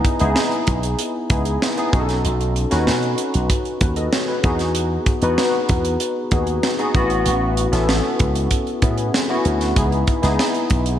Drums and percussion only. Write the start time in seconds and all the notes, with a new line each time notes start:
0.05 kick, closed hi-hat
0.19 closed hi-hat
0.36 snare
0.51 closed hi-hat
0.67 kick, closed hi-hat
0.83 closed hi-hat
0.99 closed hi-hat
1.30 kick, closed hi-hat
1.45 closed hi-hat
1.62 snare
1.77 closed hi-hat
1.93 kick, closed hi-hat
2.09 snare, closed hi-hat
2.25 closed hi-hat
2.41 closed hi-hat
2.56 closed hi-hat
2.71 snare, closed hi-hat
2.87 snare
3.02 closed hi-hat
3.18 closed hi-hat
3.34 closed hi-hat
3.50 kick, closed hi-hat
3.65 closed hi-hat
3.81 kick, closed hi-hat
3.96 closed hi-hat
4.13 snare
4.44 kick, closed hi-hat
4.59 snare, closed hi-hat
4.75 closed hi-hat
5.06 kick, closed hi-hat
5.22 closed hi-hat
5.38 snare
5.69 kick, closed hi-hat
5.85 closed hi-hat
6.00 closed hi-hat
6.31 kick, closed hi-hat
6.47 closed hi-hat
6.63 snare
6.79 closed hi-hat
6.95 kick, closed hi-hat
7.10 closed hi-hat
7.26 closed hi-hat
7.57 closed hi-hat
7.73 snare, closed hi-hat
7.89 snare
8.19 kick, closed hi-hat
8.35 closed hi-hat
8.51 kick, closed hi-hat
8.67 closed hi-hat
8.82 kick, closed hi-hat
8.98 closed hi-hat
9.14 snare
9.45 closed hi-hat
9.61 snare, closed hi-hat
9.76 kick, closed hi-hat
9.92 closed hi-hat
10.07 kick, closed hi-hat
10.23 snare, closed hi-hat
10.39 snare
10.54 closed hi-hat
10.70 kick, closed hi-hat
10.86 closed hi-hat